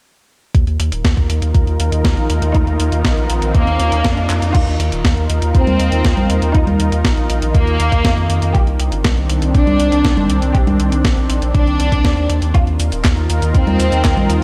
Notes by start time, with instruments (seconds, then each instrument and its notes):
0.55 analog synth bass D#2, analog synth pad D#3 D#4 F4 A#4, kick, closed hi-hat, riser
0.67 analog synth bass D#2, closed hi-hat
0.80 analog synth bass D#2, closed hi-hat
0.92 analog synth bass D#1, closed hi-hat
1.05 analog synth bass D#2, kick, snare, closed hi-hat
1.17 analog synth bass D#2, kick, closed hi-hat
1.30 analog synth bass D#2, closed hi-hat
1.42 analog synth bass D#2, closed hi-hat
1.55 analog synth bass D#2, kick, closed hi-hat
1.67 analog synth bass D#2, closed hi-hat
1.80 analog synth bass D#2, closed hi-hat
1.92 analog synth bass D#2, closed hi-hat
2.05 analog synth bass D#2, kick, snare, closed hi-hat
2.17 analog synth bass A#1, closed hi-hat
2.30 analog synth bass D#2, closed hi-hat
2.42 analog synth bass D#2, closed hi-hat
2.55 analog synth bass D#2, violin section D#4, kick, closed hi-hat
2.67 analog synth bass D#2, closed hi-hat
2.80 analog synth bass D#2, closed hi-hat
2.92 analog synth bass D#2, closed hi-hat
3.05 analog synth bass A#1, kick, snare, closed hi-hat
3.17 analog synth bass A#1, closed hi-hat
3.30 analog synth bass A#1, closed hi-hat
3.42 analog synth bass A#1, closed hi-hat
3.55 analog synth bass D#2, violin section A#3, kick, closed hi-hat
3.67 analog synth bass D#2, closed hi-hat
3.80 analog synth bass D#2, closed hi-hat
3.92 analog synth bass D#2, closed hi-hat
4.05 analog synth bass F2, kick, snare, closed hi-hat
4.17 analog synth bass F2, closed hi-hat
4.30 analog synth bass F2, clap, closed hi-hat
4.42 analog synth bass F2, closed hi-hat
4.55 analog synth bass D#2, analog synth pad D#3 D#4 F4 A#4, violin section F4, kick, closed hi-hat, crash
4.67 analog synth bass D#2, closed hi-hat
4.80 analog synth bass D#2, closed hi-hat
4.92 analog synth bass D#1, closed hi-hat
5.05 analog synth bass D#2, kick, snare, closed hi-hat
5.17 analog synth bass D#2, closed hi-hat
5.30 analog synth bass D#2, closed hi-hat
5.42 analog synth bass D#2, closed hi-hat
5.55 analog synth bass D#2, violin section C4, kick, closed hi-hat
5.67 analog synth bass D#2, closed hi-hat, high conga
5.80 analog synth bass D#2, closed hi-hat
5.92 analog synth bass D#2, closed hi-hat
6.05 analog synth bass D#2, kick, snare, closed hi-hat
6.17 analog synth bass A#1, closed hi-hat, high conga
6.30 analog synth bass D#2, closed hi-hat
6.42 analog synth bass D#2, closed hi-hat
6.55 analog synth bass D#2, violin section D#4, kick, closed hi-hat
6.67 analog synth bass D#2, closed hi-hat, high conga
6.80 analog synth bass D#2, closed hi-hat
6.92 analog synth bass D#2, closed hi-hat
7.05 analog synth bass A#1, kick, snare, closed hi-hat
7.17 analog synth bass A#1, closed hi-hat
7.30 analog synth bass A#1, closed hi-hat
7.42 analog synth bass A#1, closed hi-hat
7.55 analog synth bass D#2, violin section A#3, kick, closed hi-hat
7.67 analog synth bass D#2, closed hi-hat
7.80 analog synth bass D#2, closed hi-hat
7.92 analog synth bass D#2, kick, closed hi-hat
8.05 analog synth bass F2, kick, snare, closed hi-hat
8.17 analog synth bass F2, closed hi-hat
8.30 analog synth bass F2, closed hi-hat
8.42 analog synth bass F2, closed hi-hat
8.55 analog synth bass C2, analog synth pad C4 D4, violin section G4, kick, closed hi-hat
8.67 analog synth bass C2, closed hi-hat
8.80 analog synth bass C2, closed hi-hat
8.92 analog synth bass G1, closed hi-hat
9.05 analog synth bass C2, kick, snare, closed hi-hat
9.17 analog synth bass C2, closed hi-hat
9.30 analog synth bass C2, closed hi-hat
9.42 analog synth bass C2, closed hi-hat
9.55 analog synth bass C2, violin section D4, kick, closed hi-hat
9.67 analog synth bass C2, closed hi-hat, high conga
9.80 analog synth bass C2, closed hi-hat
9.92 analog synth bass C2, closed hi-hat
10.05 analog synth bass C2, kick, snare, closed hi-hat
10.17 analog synth bass G1, closed hi-hat, high conga
10.30 analog synth bass C2, closed hi-hat
10.42 analog synth bass C2, closed hi-hat
10.55 analog synth bass C2, violin section G4, kick, closed hi-hat
10.67 analog synth bass C2, closed hi-hat, high conga
10.80 analog synth bass C2, closed hi-hat
10.92 analog synth bass C2, closed hi-hat
11.05 analog synth bass A#1, kick, snare, closed hi-hat
11.17 analog synth bass A#1, closed hi-hat
11.30 analog synth bass A#1, closed hi-hat
11.42 analog synth bass A#1, closed hi-hat
11.55 analog synth bass C2, violin section D4, kick, closed hi-hat
11.67 analog synth bass C2, closed hi-hat
11.80 analog synth bass C2, closed hi-hat
11.92 analog synth bass C2, kick, closed hi-hat
12.05 analog synth bass D#2, kick, snare, closed hi-hat
12.17 analog synth bass D#2, closed hi-hat
12.30 analog synth bass D#2, closed hi-hat
12.42 analog synth bass D#2, closed hi-hat
12.55 analog synth bass D#2, analog synth pad D#3 D#4 F4 A#4, violin section F4, kick, closed hi-hat, cabasa
12.67 analog synth bass D#2, closed hi-hat
12.80 analog synth bass D#2, closed hi-hat, cabasa
12.92 analog synth bass D#1, closed hi-hat, cabasa
13.05 analog synth bass D#2, kick, snare, clap, closed hi-hat, cabasa
13.17 analog synth bass D#2, closed hi-hat
13.30 analog synth bass D#2, closed hi-hat, cabasa
13.42 analog synth bass D#2, closed hi-hat, cabasa
13.55 analog synth bass D#2, violin section C4, kick, closed hi-hat, cabasa
13.67 analog synth bass D#2, closed hi-hat, high conga
13.80 analog synth bass D#2, closed hi-hat, cabasa
13.92 analog synth bass D#2, closed hi-hat, cabasa
14.05 analog synth bass D#2, kick, snare, clap, closed hi-hat
14.17 analog synth bass A#1, closed hi-hat, high conga
14.30 analog synth bass D#2, closed hi-hat, cabasa